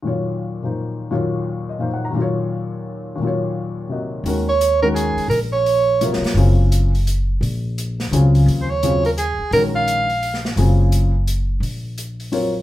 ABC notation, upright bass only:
X:1
M:3/4
L:1/8
Q:"Swing" 1/4=171
K:Ebdor
V:1 name="Upright bass" clef=bass
z6 | z6 | z6 | z6 |
E,,4- E,, z | B,,,4- B,,, z | G,,,6 | B,,,4 D,,2 |
E,,4- E,, z | B,,,6 | G,,,6 | B,,,6 |]